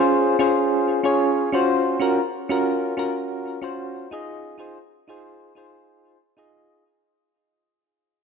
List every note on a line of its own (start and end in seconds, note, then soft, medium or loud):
0.00 0.36 C#4 medium
0.00 0.36 F4 medium
0.00 0.36 G#4 medium
0.00 0.37 C5 loud
0.39 1.00 C#4 medium
0.39 1.01 F4 medium
0.39 1.01 G#4 medium
0.39 1.02 C5 medium
1.03 1.49 C#4 medium
1.03 1.50 F4 medium
1.03 1.50 G#4 medium
1.03 1.50 C#5 medium
1.52 1.97 C#4 medium
1.52 1.97 F4 medium
1.52 1.98 F#4 medium
1.52 1.98 C5 medium
2.00 2.19 C#4 medium
2.00 2.20 F4 medium
2.00 2.20 F#4 medium
2.00 2.20 A#4 medium
2.49 2.94 C#4 medium
2.49 2.94 F4 medium
2.49 2.95 F#4 medium
2.49 2.95 A#4 medium
2.97 3.58 C#4 medium
2.97 3.59 F4 medium
2.97 3.59 F#4 medium
2.97 3.60 A#4 medium
3.62 4.07 C#4 medium
3.62 4.08 F4 medium
3.62 4.08 F#4 medium
3.62 4.09 C5 medium
4.11 4.55 D#4 medium
4.11 4.56 F4 medium
4.11 4.56 G#4 medium
4.11 4.57 D#5 medium
4.58 4.77 D#4 medium
4.58 4.78 F4 medium
4.58 4.78 G#4 medium
4.58 4.79 C5 medium
5.08 5.52 D#4 medium
5.08 5.53 F4 medium
5.08 5.53 G#4 medium
5.08 5.53 C5 medium
5.55 6.17 D#4 medium
5.55 6.17 F4 medium
5.55 6.17 G#4 medium
5.55 6.18 C5 medium
6.37 6.83 D#4 medium
6.37 6.83 F4 medium
6.37 6.84 G#4 medium
6.37 6.84 D#5 medium